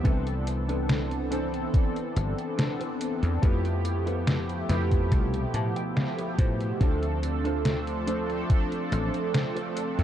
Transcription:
0.03 1.66 C2 loud
0.03 1.26 E3 medium
0.03 1.26 B3 medium
0.03 1.27 C4 medium
0.03 0.27 D4 loud
0.03 1.27 D4 medium
0.03 0.27 E4 loud
0.03 0.27 A4 loud
0.03 1.27 A4 medium
0.03 0.27 B4 loud
0.03 kick loud
0.03 closed hi-hat medium
0.27 closed hi-hat soft
0.46 muted clean electric guitar stroke soft
0.46 closed hi-hat medium
0.69 1.00 D4 medium
0.69 1.00 E4 medium
0.69 1.01 A4 medium
0.69 1.01 B4 medium
0.69 closed hi-hat soft
0.89 snare loud
0.89 closed hi-hat medium
1.11 closed hi-hat soft
1.31 1.69 E3 medium
1.31 1.69 C4 medium
1.31 1.96 D4 medium
1.31 1.69 D4 medium
1.31 1.96 E4 medium
1.31 1.96 A4 medium
1.31 1.69 A4 loud
1.31 1.96 C5 loud
1.31 closed hi-hat medium
1.54 closed hi-hat soft
1.72 3.37 E3 medium
1.72 3.38 C4 medium
1.72 3.38 D4 medium
1.72 3.39 A4 loud
1.72 kick loud
1.72 closed hi-hat medium
1.96 closed hi-hat soft
2.16 2.33 G1 loud
2.16 closed hi-hat medium
2.38 closed hi-hat soft
2.58 muted clean electric guitar stroke medium
2.58 snare loud
2.58 closed hi-hat medium
2.80 muted clean electric guitar stroke loud
2.80 closed hi-hat soft
3.00 muted clean electric guitar stroke soft
3.00 closed hi-hat loud
3.23 3.38 E2 medium
3.23 closed hi-hat soft
3.41 4.62 F2 medium
3.41 4.64 F3 medium
3.41 4.64 A3 medium
3.41 4.65 B3 medium
3.41 3.65 E4 loud
3.41 4.65 E4 medium
3.41 3.65 G4 loud
3.41 4.65 G4 loud
3.41 3.65 A4 loud
3.41 3.65 B4 loud
3.41 kick loud
3.41 closed hi-hat medium
3.65 closed hi-hat soft
3.84 muted clean electric guitar stroke soft
3.84 closed hi-hat medium
4.06 4.38 E4 medium
4.06 4.38 G4 medium
4.06 4.38 A4 medium
4.06 4.39 B4 medium
4.06 closed hi-hat soft
4.27 snare loud
4.27 closed hi-hat medium
4.49 closed hi-hat soft
4.69 5.11 F2 loud
4.69 5.07 F3 medium
4.69 5.07 A3 medium
4.69 5.07 B3 medium
4.69 5.34 E4 medium
4.69 5.07 E4 medium
4.69 5.34 G4 medium
4.69 5.07 G4 loud
4.69 5.34 A4 medium
4.69 5.34 B4 loud
4.69 snare medium
4.69 closed hi-hat medium
4.92 kick medium
4.92 closed hi-hat soft
5.10 5.44 C2 medium
5.10 6.76 B2 medium
5.10 6.75 F3 medium
5.10 6.76 A3 medium
5.10 6.77 G4 loud
5.10 kick loud
5.10 closed hi-hat medium
5.34 closed hi-hat soft
5.54 5.71 A2 medium
5.54 5.75 A5 medium
5.54 closed hi-hat medium
5.76 5.95 G5 medium
5.76 closed hi-hat soft
5.96 6.36 F5 medium
5.96 muted clean electric guitar stroke medium
5.96 snare loud
5.96 closed hi-hat medium
6.18 muted clean electric guitar stroke loud
6.18 closed hi-hat soft
6.38 6.71 A2 medium
6.38 6.78 C5 medium
6.38 muted clean electric guitar stroke soft
6.38 kick loud
6.38 closed hi-hat medium
6.61 closed hi-hat soft
6.79 8.42 D2 medium
6.79 8.02 F3 medium
6.79 8.02 A3 medium
6.79 8.03 C4 medium
6.79 7.03 D4 loud
6.79 8.03 D4 medium
6.79 7.03 F4 loud
6.79 10.04 A4 medium
6.79 7.03 A4 loud
6.79 8.03 A4 loud
6.79 7.03 C5 loud
6.79 10.04 C6 medium
6.79 10.04 D6 medium
6.79 kick loud
6.79 closed hi-hat medium
7.03 closed hi-hat soft
7.22 muted clean electric guitar stroke soft
7.22 closed hi-hat medium
7.44 7.76 D4 medium
7.44 7.76 F4 medium
7.44 7.77 A4 medium
7.44 7.77 C5 medium
7.44 closed hi-hat soft
7.65 snare loud
7.65 closed hi-hat medium
7.87 closed hi-hat soft
8.07 8.45 F3 medium
8.07 8.45 A3 medium
8.07 8.45 C4 medium
8.07 8.72 D4 medium
8.07 8.45 D4 medium
8.07 8.72 F4 medium
8.07 8.72 A4 medium
8.07 8.45 A4 loud
8.07 8.72 C5 loud
8.07 closed hi-hat medium
8.30 closed hi-hat soft
8.48 10.04 F3 medium
8.48 10.04 A3 medium
8.48 10.04 C4 medium
8.48 10.04 D4 medium
8.48 10.04 A4 loud
8.48 kick loud
8.48 closed hi-hat medium
8.72 closed hi-hat soft
8.92 9.09 A1 loud
8.92 closed hi-hat medium
9.14 closed hi-hat soft
9.34 muted clean electric guitar stroke medium
9.34 snare loud
9.34 closed hi-hat medium
9.56 muted clean electric guitar stroke loud
9.56 closed hi-hat soft
9.76 muted clean electric guitar stroke soft
9.76 closed hi-hat medium
9.99 10.04 F2 medium
9.99 closed hi-hat soft

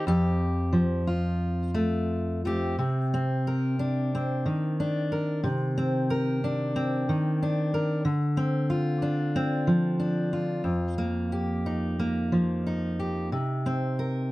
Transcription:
0.00 1.74 C4 medium
0.07 2.78 F2 medium
0.07 1.07 G4 medium
0.73 2.74 F3 medium
1.07 2.44 F4 medium
1.74 2.44 A3 medium
2.45 2.74 A3 soft
2.45 3.13 C4 medium
2.45 2.75 G4 medium
2.79 4.45 C3 medium
3.14 4.14 C4 medium
3.47 5.11 A#4 medium
3.79 4.79 D4 medium
4.15 5.77 C4 medium
4.46 7.08 D#3 medium
4.80 5.47 D4 medium
5.12 5.40 A#4 medium
5.44 7.07 C3 medium
5.78 6.75 C4 medium
6.10 7.73 A#4 medium
6.44 7.41 D4 medium
6.76 8.08 C4 medium
7.09 8.06 D#3 medium
7.43 8.03 D4 medium
7.74 8.02 A#4 medium
8.05 10.61 D3 medium
8.37 9.35 C4 medium
8.70 10.32 F4 medium
9.02 9.98 D4 medium
9.36 10.98 C4 medium
9.67 10.61 F3 medium
10.00 10.61 D4 medium
10.33 11.32 F4 medium
10.64 13.32 F2 medium
10.98 11.98 A#3 medium
11.32 12.98 G4 medium
11.66 12.66 D#4 medium
11.99 13.29 A#3 medium
12.32 13.28 F3 medium
12.67 14.32 D#4 medium
12.99 13.29 G4 soft
13.32 14.32 C3 medium
13.66 14.32 C4 medium
13.99 14.32 A#4 medium

